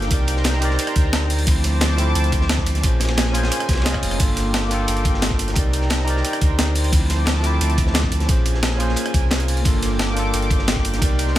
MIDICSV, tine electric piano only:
0, 0, Header, 1, 2, 480
1, 0, Start_track
1, 0, Key_signature, -2, "minor"
1, 0, Tempo, 340909
1, 151, Time_signature, 4, 2, 24, 8
1, 16033, End_track
2, 0, Start_track
2, 0, Title_t, "Tine electric piano"
2, 0, Program_c, 0, 4
2, 0, Control_c, 0, 64, 127
2, 0, Note_on_c, 0, 58, 90
2, 0, Note_on_c, 0, 62, 85
2, 0, Note_on_c, 0, 65, 88
2, 0, Note_on_c, 0, 69, 102
2, 112, Note_on_c, 0, 63, 80
2, 139, Note_on_c, 0, 67, 78
2, 142, Note_off_c, 0, 69, 0
2, 166, Note_on_c, 0, 70, 74
2, 170, Control_c, 0, 64, 0
2, 172, Note_off_c, 0, 62, 0
2, 172, Note_off_c, 0, 65, 0
2, 173, Note_off_c, 0, 58, 0
2, 192, Note_on_c, 0, 74, 85
2, 390, Control_c, 0, 64, 127
2, 816, Note_off_c, 0, 63, 0
2, 833, Note_on_c, 0, 63, 89
2, 836, Note_off_c, 0, 67, 0
2, 850, Note_off_c, 0, 70, 0
2, 861, Note_on_c, 0, 67, 83
2, 862, Note_off_c, 0, 74, 0
2, 887, Note_on_c, 0, 70, 85
2, 914, Note_on_c, 0, 74, 103
2, 2023, Note_off_c, 0, 63, 0
2, 2030, Note_on_c, 0, 53, 80
2, 2037, Note_off_c, 0, 67, 0
2, 2050, Note_off_c, 0, 70, 0
2, 2057, Note_on_c, 0, 57, 74
2, 2064, Note_off_c, 0, 74, 0
2, 2084, Note_on_c, 0, 60, 75
2, 2090, Control_c, 0, 64, 0
2, 2110, Note_on_c, 0, 64, 93
2, 2344, Control_c, 0, 64, 127
2, 2731, Note_off_c, 0, 53, 0
2, 2748, Note_on_c, 0, 53, 94
2, 2755, Note_off_c, 0, 57, 0
2, 2769, Note_off_c, 0, 60, 0
2, 2776, Note_on_c, 0, 57, 83
2, 2781, Note_off_c, 0, 64, 0
2, 2803, Note_on_c, 0, 60, 88
2, 2831, Note_on_c, 0, 64, 103
2, 3941, Note_off_c, 0, 53, 0
2, 3955, Note_off_c, 0, 57, 0
2, 3955, Note_on_c, 0, 61, 83
2, 3968, Note_off_c, 0, 60, 0
2, 3982, Note_off_c, 0, 64, 0
2, 3982, Note_on_c, 0, 65, 72
2, 4007, Control_c, 0, 64, 0
2, 4010, Note_on_c, 0, 68, 75
2, 4036, Note_on_c, 0, 72, 88
2, 4225, Control_c, 0, 64, 127
2, 4657, Note_off_c, 0, 61, 0
2, 4674, Note_on_c, 0, 61, 92
2, 4678, Note_off_c, 0, 65, 0
2, 4691, Note_off_c, 0, 68, 0
2, 4700, Note_on_c, 0, 65, 82
2, 4705, Note_off_c, 0, 72, 0
2, 4727, Note_on_c, 0, 68, 85
2, 4756, Note_on_c, 0, 72, 101
2, 5388, Note_off_c, 0, 61, 0
2, 5401, Note_off_c, 0, 65, 0
2, 5412, Note_on_c, 0, 61, 86
2, 5415, Note_off_c, 0, 68, 0
2, 5425, Note_on_c, 0, 65, 82
2, 5429, Note_off_c, 0, 72, 0
2, 5439, Note_on_c, 0, 68, 80
2, 5452, Note_on_c, 0, 75, 95
2, 5513, Note_off_c, 0, 61, 0
2, 5520, Note_off_c, 0, 65, 0
2, 5527, Note_off_c, 0, 68, 0
2, 5532, Note_on_c, 0, 61, 81
2, 5533, Note_off_c, 0, 75, 0
2, 5547, Note_on_c, 0, 65, 74
2, 5560, Note_on_c, 0, 68, 75
2, 5574, Note_on_c, 0, 73, 88
2, 5872, Note_off_c, 0, 61, 0
2, 5872, Note_on_c, 0, 58, 76
2, 5879, Note_off_c, 0, 65, 0
2, 5886, Note_off_c, 0, 68, 0
2, 5893, Note_off_c, 0, 73, 0
2, 5897, Note_on_c, 0, 62, 76
2, 5924, Note_on_c, 0, 65, 74
2, 5931, Control_c, 0, 64, 0
2, 5950, Note_on_c, 0, 69, 88
2, 6140, Control_c, 0, 64, 127
2, 6574, Note_off_c, 0, 58, 0
2, 6591, Note_on_c, 0, 58, 94
2, 6595, Note_off_c, 0, 62, 0
2, 6609, Note_off_c, 0, 65, 0
2, 6619, Note_on_c, 0, 62, 85
2, 6622, Note_off_c, 0, 69, 0
2, 6645, Note_on_c, 0, 65, 90
2, 6673, Note_on_c, 0, 69, 102
2, 7782, Note_off_c, 0, 58, 0
2, 7790, Note_on_c, 0, 63, 85
2, 7796, Note_off_c, 0, 62, 0
2, 7809, Note_off_c, 0, 65, 0
2, 7816, Note_on_c, 0, 67, 73
2, 7823, Note_off_c, 0, 69, 0
2, 7842, Note_on_c, 0, 70, 75
2, 7848, Control_c, 0, 64, 0
2, 7869, Note_on_c, 0, 74, 92
2, 8078, Control_c, 0, 64, 127
2, 8493, Note_off_c, 0, 63, 0
2, 8510, Note_on_c, 0, 63, 94
2, 8514, Note_off_c, 0, 67, 0
2, 8527, Note_off_c, 0, 70, 0
2, 8538, Note_on_c, 0, 67, 83
2, 8541, Note_off_c, 0, 74, 0
2, 8564, Note_on_c, 0, 70, 84
2, 8591, Note_on_c, 0, 74, 102
2, 9701, Note_off_c, 0, 63, 0
2, 9712, Note_on_c, 0, 53, 84
2, 9716, Note_off_c, 0, 67, 0
2, 9729, Note_off_c, 0, 70, 0
2, 9738, Note_on_c, 0, 57, 74
2, 9742, Note_off_c, 0, 74, 0
2, 9764, Note_on_c, 0, 60, 80
2, 9768, Control_c, 0, 64, 0
2, 9790, Note_on_c, 0, 64, 91
2, 10007, Control_c, 0, 64, 127
2, 10410, Note_off_c, 0, 53, 0
2, 10427, Note_on_c, 0, 53, 93
2, 10436, Note_off_c, 0, 57, 0
2, 10449, Note_off_c, 0, 60, 0
2, 10454, Note_on_c, 0, 57, 85
2, 10462, Note_off_c, 0, 64, 0
2, 10481, Note_on_c, 0, 60, 82
2, 10509, Note_on_c, 0, 64, 108
2, 11620, Note_off_c, 0, 53, 0
2, 11628, Note_on_c, 0, 61, 84
2, 11634, Note_off_c, 0, 57, 0
2, 11647, Note_off_c, 0, 60, 0
2, 11653, Note_on_c, 0, 65, 74
2, 11661, Note_off_c, 0, 64, 0
2, 11680, Note_on_c, 0, 68, 77
2, 11691, Control_c, 0, 64, 0
2, 11708, Note_on_c, 0, 72, 85
2, 11922, Control_c, 0, 64, 127
2, 12326, Note_off_c, 0, 61, 0
2, 12343, Note_on_c, 0, 61, 95
2, 12353, Note_off_c, 0, 65, 0
2, 12367, Note_off_c, 0, 68, 0
2, 12369, Note_on_c, 0, 65, 86
2, 12381, Note_off_c, 0, 72, 0
2, 12397, Note_on_c, 0, 68, 87
2, 12424, Note_on_c, 0, 72, 100
2, 13538, Note_off_c, 0, 61, 0
2, 13545, Note_on_c, 0, 58, 81
2, 13551, Note_off_c, 0, 65, 0
2, 13565, Note_off_c, 0, 68, 0
2, 13572, Note_on_c, 0, 62, 73
2, 13578, Note_off_c, 0, 72, 0
2, 13599, Note_on_c, 0, 65, 75
2, 13610, Control_c, 0, 64, 0
2, 13627, Note_on_c, 0, 69, 86
2, 13886, Control_c, 0, 64, 127
2, 14252, Note_off_c, 0, 58, 0
2, 14269, Note_on_c, 0, 58, 96
2, 14273, Note_off_c, 0, 62, 0
2, 14286, Note_off_c, 0, 65, 0
2, 14297, Note_on_c, 0, 62, 85
2, 14300, Note_off_c, 0, 69, 0
2, 14323, Note_on_c, 0, 65, 84
2, 14349, Note_on_c, 0, 69, 101
2, 15461, Note_off_c, 0, 58, 0
2, 15471, Note_on_c, 0, 63, 83
2, 15475, Note_off_c, 0, 62, 0
2, 15488, Note_off_c, 0, 65, 0
2, 15496, Note_on_c, 0, 67, 76
2, 15501, Note_off_c, 0, 69, 0
2, 15523, Note_on_c, 0, 70, 77
2, 15531, Control_c, 0, 64, 0
2, 15551, Note_on_c, 0, 74, 88
2, 15756, Control_c, 0, 64, 127
2, 16033, Note_off_c, 0, 63, 0
2, 16033, Note_off_c, 0, 67, 0
2, 16033, Note_off_c, 0, 70, 0
2, 16033, Note_off_c, 0, 74, 0
2, 16033, End_track
0, 0, End_of_file